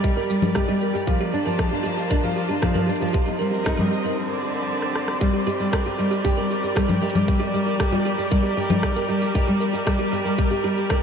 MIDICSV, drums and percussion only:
0, 0, Header, 1, 2, 480
1, 0, Start_track
1, 0, Key_signature, -2, "minor"
1, 0, Tempo, 517241
1, 996, Time_signature, 4, 2, 24, 8
1, 10234, End_track
2, 0, Start_track
2, 0, Title_t, "Drums"
2, 37, Note_on_c, 9, 36, 101
2, 44, Note_on_c, 9, 82, 28
2, 130, Note_off_c, 9, 36, 0
2, 136, Note_off_c, 9, 82, 0
2, 281, Note_on_c, 9, 82, 74
2, 374, Note_off_c, 9, 82, 0
2, 393, Note_on_c, 9, 64, 77
2, 401, Note_on_c, 9, 82, 38
2, 486, Note_off_c, 9, 64, 0
2, 494, Note_off_c, 9, 82, 0
2, 511, Note_on_c, 9, 37, 90
2, 517, Note_on_c, 9, 36, 89
2, 519, Note_on_c, 9, 82, 32
2, 604, Note_off_c, 9, 37, 0
2, 610, Note_off_c, 9, 36, 0
2, 612, Note_off_c, 9, 82, 0
2, 759, Note_on_c, 9, 82, 70
2, 852, Note_off_c, 9, 82, 0
2, 883, Note_on_c, 9, 82, 41
2, 976, Note_off_c, 9, 82, 0
2, 996, Note_on_c, 9, 36, 91
2, 1003, Note_on_c, 9, 82, 31
2, 1089, Note_off_c, 9, 36, 0
2, 1096, Note_off_c, 9, 82, 0
2, 1242, Note_on_c, 9, 82, 71
2, 1335, Note_off_c, 9, 82, 0
2, 1362, Note_on_c, 9, 82, 41
2, 1455, Note_off_c, 9, 82, 0
2, 1476, Note_on_c, 9, 36, 98
2, 1476, Note_on_c, 9, 37, 93
2, 1483, Note_on_c, 9, 82, 30
2, 1569, Note_off_c, 9, 36, 0
2, 1569, Note_off_c, 9, 37, 0
2, 1576, Note_off_c, 9, 82, 0
2, 1719, Note_on_c, 9, 82, 68
2, 1812, Note_off_c, 9, 82, 0
2, 1842, Note_on_c, 9, 82, 37
2, 1935, Note_off_c, 9, 82, 0
2, 1956, Note_on_c, 9, 36, 96
2, 1963, Note_on_c, 9, 82, 29
2, 2049, Note_off_c, 9, 36, 0
2, 2056, Note_off_c, 9, 82, 0
2, 2203, Note_on_c, 9, 82, 73
2, 2295, Note_off_c, 9, 82, 0
2, 2324, Note_on_c, 9, 82, 41
2, 2417, Note_off_c, 9, 82, 0
2, 2436, Note_on_c, 9, 36, 94
2, 2436, Note_on_c, 9, 37, 93
2, 2443, Note_on_c, 9, 82, 30
2, 2529, Note_off_c, 9, 36, 0
2, 2529, Note_off_c, 9, 37, 0
2, 2536, Note_off_c, 9, 82, 0
2, 2556, Note_on_c, 9, 64, 74
2, 2649, Note_off_c, 9, 64, 0
2, 2682, Note_on_c, 9, 82, 68
2, 2742, Note_off_c, 9, 82, 0
2, 2742, Note_on_c, 9, 82, 54
2, 2801, Note_off_c, 9, 82, 0
2, 2801, Note_on_c, 9, 82, 44
2, 2860, Note_off_c, 9, 82, 0
2, 2860, Note_on_c, 9, 82, 35
2, 2917, Note_on_c, 9, 36, 101
2, 2919, Note_off_c, 9, 82, 0
2, 2919, Note_on_c, 9, 82, 29
2, 3009, Note_off_c, 9, 36, 0
2, 3012, Note_off_c, 9, 82, 0
2, 3161, Note_on_c, 9, 82, 72
2, 3253, Note_off_c, 9, 82, 0
2, 3284, Note_on_c, 9, 82, 41
2, 3377, Note_off_c, 9, 82, 0
2, 3397, Note_on_c, 9, 36, 94
2, 3398, Note_on_c, 9, 37, 103
2, 3405, Note_on_c, 9, 82, 31
2, 3490, Note_off_c, 9, 36, 0
2, 3491, Note_off_c, 9, 37, 0
2, 3498, Note_off_c, 9, 82, 0
2, 3518, Note_on_c, 9, 64, 59
2, 3610, Note_off_c, 9, 64, 0
2, 3645, Note_on_c, 9, 82, 65
2, 3738, Note_off_c, 9, 82, 0
2, 3766, Note_on_c, 9, 82, 37
2, 3859, Note_off_c, 9, 82, 0
2, 4476, Note_on_c, 9, 37, 47
2, 4569, Note_off_c, 9, 37, 0
2, 4598, Note_on_c, 9, 37, 66
2, 4691, Note_off_c, 9, 37, 0
2, 4714, Note_on_c, 9, 37, 72
2, 4807, Note_off_c, 9, 37, 0
2, 4836, Note_on_c, 9, 42, 64
2, 4837, Note_on_c, 9, 36, 107
2, 4844, Note_on_c, 9, 82, 32
2, 4929, Note_off_c, 9, 42, 0
2, 4930, Note_off_c, 9, 36, 0
2, 4936, Note_off_c, 9, 82, 0
2, 5083, Note_on_c, 9, 82, 83
2, 5176, Note_off_c, 9, 82, 0
2, 5203, Note_on_c, 9, 82, 43
2, 5296, Note_off_c, 9, 82, 0
2, 5317, Note_on_c, 9, 36, 103
2, 5319, Note_on_c, 9, 37, 106
2, 5319, Note_on_c, 9, 42, 71
2, 5326, Note_on_c, 9, 82, 34
2, 5410, Note_off_c, 9, 36, 0
2, 5412, Note_off_c, 9, 37, 0
2, 5412, Note_off_c, 9, 42, 0
2, 5419, Note_off_c, 9, 82, 0
2, 5437, Note_on_c, 9, 42, 31
2, 5530, Note_off_c, 9, 42, 0
2, 5567, Note_on_c, 9, 82, 73
2, 5660, Note_off_c, 9, 82, 0
2, 5683, Note_on_c, 9, 82, 39
2, 5776, Note_off_c, 9, 82, 0
2, 5796, Note_on_c, 9, 42, 70
2, 5797, Note_on_c, 9, 36, 108
2, 5804, Note_on_c, 9, 82, 31
2, 5889, Note_off_c, 9, 42, 0
2, 5890, Note_off_c, 9, 36, 0
2, 5896, Note_off_c, 9, 82, 0
2, 6045, Note_on_c, 9, 82, 72
2, 6138, Note_off_c, 9, 82, 0
2, 6160, Note_on_c, 9, 42, 32
2, 6168, Note_on_c, 9, 82, 41
2, 6253, Note_off_c, 9, 42, 0
2, 6260, Note_off_c, 9, 82, 0
2, 6277, Note_on_c, 9, 36, 102
2, 6281, Note_on_c, 9, 37, 106
2, 6281, Note_on_c, 9, 42, 68
2, 6288, Note_on_c, 9, 82, 32
2, 6370, Note_off_c, 9, 36, 0
2, 6373, Note_off_c, 9, 37, 0
2, 6373, Note_off_c, 9, 42, 0
2, 6381, Note_off_c, 9, 82, 0
2, 6398, Note_on_c, 9, 42, 44
2, 6398, Note_on_c, 9, 64, 74
2, 6491, Note_off_c, 9, 42, 0
2, 6491, Note_off_c, 9, 64, 0
2, 6585, Note_on_c, 9, 82, 68
2, 6639, Note_on_c, 9, 42, 43
2, 6639, Note_on_c, 9, 64, 59
2, 6647, Note_off_c, 9, 82, 0
2, 6647, Note_on_c, 9, 82, 39
2, 6732, Note_off_c, 9, 42, 0
2, 6732, Note_off_c, 9, 64, 0
2, 6739, Note_off_c, 9, 82, 0
2, 6758, Note_on_c, 9, 36, 113
2, 6759, Note_on_c, 9, 42, 66
2, 6766, Note_on_c, 9, 82, 32
2, 6850, Note_off_c, 9, 36, 0
2, 6852, Note_off_c, 9, 42, 0
2, 6859, Note_off_c, 9, 82, 0
2, 7004, Note_on_c, 9, 82, 87
2, 7097, Note_off_c, 9, 82, 0
2, 7125, Note_on_c, 9, 82, 49
2, 7218, Note_off_c, 9, 82, 0
2, 7237, Note_on_c, 9, 37, 108
2, 7237, Note_on_c, 9, 42, 69
2, 7238, Note_on_c, 9, 36, 112
2, 7244, Note_on_c, 9, 82, 34
2, 7330, Note_off_c, 9, 37, 0
2, 7330, Note_off_c, 9, 42, 0
2, 7331, Note_off_c, 9, 36, 0
2, 7337, Note_off_c, 9, 82, 0
2, 7355, Note_on_c, 9, 42, 31
2, 7355, Note_on_c, 9, 64, 57
2, 7448, Note_off_c, 9, 42, 0
2, 7448, Note_off_c, 9, 64, 0
2, 7483, Note_on_c, 9, 82, 77
2, 7576, Note_off_c, 9, 82, 0
2, 7605, Note_on_c, 9, 82, 40
2, 7640, Note_off_c, 9, 82, 0
2, 7640, Note_on_c, 9, 82, 32
2, 7681, Note_off_c, 9, 82, 0
2, 7681, Note_on_c, 9, 82, 27
2, 7715, Note_on_c, 9, 42, 63
2, 7718, Note_on_c, 9, 36, 112
2, 7722, Note_off_c, 9, 82, 0
2, 7722, Note_on_c, 9, 82, 31
2, 7761, Note_off_c, 9, 82, 0
2, 7761, Note_on_c, 9, 82, 19
2, 7800, Note_off_c, 9, 82, 0
2, 7800, Note_on_c, 9, 82, 16
2, 7807, Note_off_c, 9, 42, 0
2, 7811, Note_off_c, 9, 36, 0
2, 7893, Note_off_c, 9, 82, 0
2, 7964, Note_on_c, 9, 82, 81
2, 8056, Note_off_c, 9, 82, 0
2, 8075, Note_on_c, 9, 42, 29
2, 8075, Note_on_c, 9, 64, 80
2, 8167, Note_off_c, 9, 42, 0
2, 8167, Note_off_c, 9, 64, 0
2, 8195, Note_on_c, 9, 37, 105
2, 8195, Note_on_c, 9, 42, 64
2, 8198, Note_on_c, 9, 36, 94
2, 8202, Note_on_c, 9, 82, 15
2, 8262, Note_off_c, 9, 82, 0
2, 8262, Note_on_c, 9, 82, 21
2, 8288, Note_off_c, 9, 37, 0
2, 8288, Note_off_c, 9, 42, 0
2, 8290, Note_off_c, 9, 36, 0
2, 8318, Note_on_c, 9, 42, 44
2, 8325, Note_off_c, 9, 82, 0
2, 8325, Note_on_c, 9, 82, 23
2, 8386, Note_off_c, 9, 82, 0
2, 8386, Note_on_c, 9, 82, 26
2, 8411, Note_off_c, 9, 42, 0
2, 8442, Note_off_c, 9, 82, 0
2, 8442, Note_on_c, 9, 82, 79
2, 8534, Note_off_c, 9, 82, 0
2, 8556, Note_on_c, 9, 42, 43
2, 8563, Note_on_c, 9, 82, 48
2, 8581, Note_off_c, 9, 42, 0
2, 8581, Note_on_c, 9, 42, 34
2, 8606, Note_off_c, 9, 42, 0
2, 8606, Note_on_c, 9, 42, 29
2, 8630, Note_off_c, 9, 42, 0
2, 8630, Note_on_c, 9, 42, 24
2, 8653, Note_off_c, 9, 42, 0
2, 8653, Note_on_c, 9, 42, 20
2, 8656, Note_off_c, 9, 82, 0
2, 8677, Note_on_c, 9, 36, 105
2, 8678, Note_off_c, 9, 42, 0
2, 8678, Note_on_c, 9, 42, 67
2, 8685, Note_on_c, 9, 82, 36
2, 8770, Note_off_c, 9, 36, 0
2, 8771, Note_off_c, 9, 42, 0
2, 8778, Note_off_c, 9, 82, 0
2, 8923, Note_on_c, 9, 82, 83
2, 9015, Note_off_c, 9, 82, 0
2, 9047, Note_on_c, 9, 82, 48
2, 9140, Note_off_c, 9, 82, 0
2, 9158, Note_on_c, 9, 36, 115
2, 9160, Note_on_c, 9, 37, 106
2, 9160, Note_on_c, 9, 42, 62
2, 9168, Note_on_c, 9, 82, 35
2, 9250, Note_off_c, 9, 36, 0
2, 9253, Note_off_c, 9, 37, 0
2, 9253, Note_off_c, 9, 42, 0
2, 9261, Note_off_c, 9, 82, 0
2, 9277, Note_on_c, 9, 42, 30
2, 9370, Note_off_c, 9, 42, 0
2, 9404, Note_on_c, 9, 82, 74
2, 9497, Note_off_c, 9, 82, 0
2, 9525, Note_on_c, 9, 82, 40
2, 9618, Note_off_c, 9, 82, 0
2, 9635, Note_on_c, 9, 42, 61
2, 9638, Note_on_c, 9, 36, 112
2, 9642, Note_on_c, 9, 82, 35
2, 9728, Note_off_c, 9, 42, 0
2, 9731, Note_off_c, 9, 36, 0
2, 9735, Note_off_c, 9, 82, 0
2, 10001, Note_on_c, 9, 82, 49
2, 10094, Note_off_c, 9, 82, 0
2, 10116, Note_on_c, 9, 37, 98
2, 10116, Note_on_c, 9, 42, 64
2, 10118, Note_on_c, 9, 36, 111
2, 10123, Note_on_c, 9, 82, 33
2, 10208, Note_off_c, 9, 37, 0
2, 10208, Note_off_c, 9, 42, 0
2, 10211, Note_off_c, 9, 36, 0
2, 10216, Note_off_c, 9, 82, 0
2, 10234, End_track
0, 0, End_of_file